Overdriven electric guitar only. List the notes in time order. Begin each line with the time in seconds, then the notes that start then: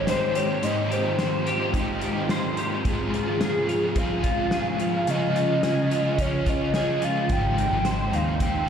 Already playing: G#3 C4 D#4 G4
0.62 G#3 C4 D#4 G4
1.45 D#4 G4
1.50 C4
1.72 G#3 C4
1.77 D#4 G4
2.84 G#3 C4
2.88 F4 G#4
3.95 G#3 C4
3.99 F4 G#4
5.06 C#3 G#3 C#4 F4 G#4
5.90 C#4 F4 G#4
6.19 C#3 G#3 C#4 F4 G#4
6.74 G#3 C#4 F4
6.78 G#4
7.28 G#3 C4
7.33 D#4 G4
8.40 G#3 C4 D#4 G4